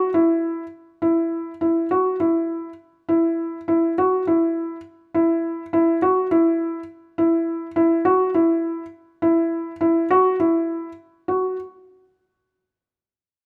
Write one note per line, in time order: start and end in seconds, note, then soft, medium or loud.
0.14 0.63 E4 medium
1.02 1.51 E4 medium
1.61 1.85 E4 medium
1.91 2.15 F#4 medium
2.20 2.69 E4 medium
3.09 3.57 E4 medium
3.68 3.92 E4 medium
3.98 4.22 F#4 medium
4.27 4.75 E4 medium
5.14 5.62 E4 medium
5.73 5.97 E4 medium
6.02 6.26 F#4 medium
6.31 6.79 E4 medium
7.18 7.66 E4 medium
7.76 8.00 E4 medium
8.05 8.29 F#4 medium
8.35 8.83 E4 medium
9.22 9.71 E4 medium
9.81 10.05 E4 medium
10.11 10.35 F#4 medium
10.40 10.89 E4 medium
11.28 11.56 F#4 medium